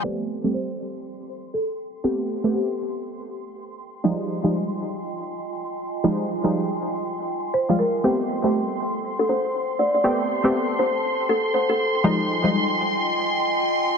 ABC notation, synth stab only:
X:1
M:4/4
L:1/16
Q:"Swing 16ths" 1/4=120
K:Am
V:1 name="Synth stab"
[A,B,CG]3 [G,A,CG]12- [G,A,CG] | [A,B,CG]3 [A,B,CG]12- [A,B,CG] | [F,G,_A,_E]3 [F,G,A,E]12- [F,G,A,E] | [F,G,_A,_E]3 [F,G,A,E]8- [F,G,A,E]2 [F,G,A,F] z2 |
[A,B,CG]3 [G,A,CG]12- [G,A,CG] | [A,B,CG]3 [A,B,CG]12- [A,B,CG] | [F,G,_A,_E]3 [F,G,A,E]12- [F,G,A,E] |]